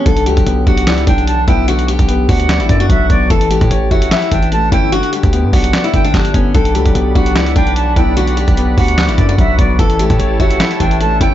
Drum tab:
HH |xxxxx-xxxxxxx-x-|xxxxx-oxxxxxx-x-|xxxxx-xxxxxxx-x-|xxxxx-oxxxxxxxx-|
CP |--------x-------|--------x-------|--------x-------|--------x---x---|
SD |--------o-------|--------o-------|--------o-------|--------o---o---|
BD |o--o--o---o---o-|---o--o---o-o-o-|o--o--o---o---o-|---o--o---o-o-o-|

HH |xxxxx-xxxxxxx-x-|xxxxx-oxxxxxx-x-|xxxxx-xxxxxxx-x-|
CP |--------x-------|--------x-------|--------x-------|
SD |--------o-------|--------o-------|--------o-------|
BD |o--o--o---o---o-|---o--o---o-o-o-|o--o--o---o---o-|